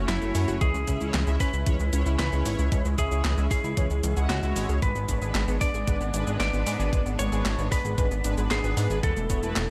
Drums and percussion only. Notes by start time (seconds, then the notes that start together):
0.09 snare, clap, closed hi-hat, cabasa
0.22 cabasa
0.35 open hi-hat, cabasa
0.48 cabasa
0.61 kick, closed hi-hat, cabasa
0.74 cabasa
0.88 kick, closed hi-hat, cabasa
1.01 cabasa
1.14 snare, clap, closed hi-hat, cabasa
1.27 cabasa
1.40 kick, open hi-hat, cabasa
1.53 cabasa
1.66 kick, closed hi-hat, cabasa
1.80 cabasa
1.93 closed hi-hat, cabasa
2.06 cabasa
2.19 snare, clap, closed hi-hat, cabasa
2.32 cabasa
2.46 open hi-hat, cabasa
2.59 cabasa
2.72 kick, closed hi-hat, cabasa
2.85 cabasa
2.98 kick, closed hi-hat, cabasa
3.11 cabasa
3.25 snare, clap, closed hi-hat, cabasa
3.38 cabasa
3.51 kick, open hi-hat, cabasa
3.64 cabasa
3.77 kick, closed hi-hat, cabasa
3.90 cabasa
4.03 closed hi-hat, cabasa
4.17 cabasa
4.30 snare, clap, closed hi-hat, cabasa
4.43 cabasa
4.56 open hi-hat, cabasa
4.69 cabasa
4.82 kick, closed hi-hat, cabasa
4.95 cabasa
5.09 kick, closed hi-hat, cabasa
5.22 cabasa
5.35 snare, clap, closed hi-hat, cabasa
5.48 cabasa
5.61 kick, open hi-hat, cabasa
5.74 cabasa
5.88 kick, closed hi-hat, cabasa
6.01 cabasa
6.14 closed hi-hat, cabasa
6.27 cabasa
6.40 snare, clap, closed hi-hat, cabasa
6.53 cabasa
6.67 open hi-hat, cabasa
6.80 cabasa
6.93 kick, closed hi-hat, cabasa
7.06 cabasa
7.19 closed hi-hat, cabasa
7.32 cabasa
7.46 snare, clap, closed hi-hat, cabasa
7.59 cabasa
7.72 kick, open hi-hat, cabasa
7.85 cabasa
7.98 kick, closed hi-hat, cabasa
8.11 cabasa
8.24 closed hi-hat, cabasa
8.37 cabasa
8.51 snare, clap, closed hi-hat, cabasa
8.64 cabasa
8.77 open hi-hat, cabasa
8.90 cabasa
9.03 kick, closed hi-hat, cabasa
9.17 cabasa
9.30 kick, closed hi-hat, cabasa
9.43 cabasa
9.56 snare, clap, closed hi-hat, cabasa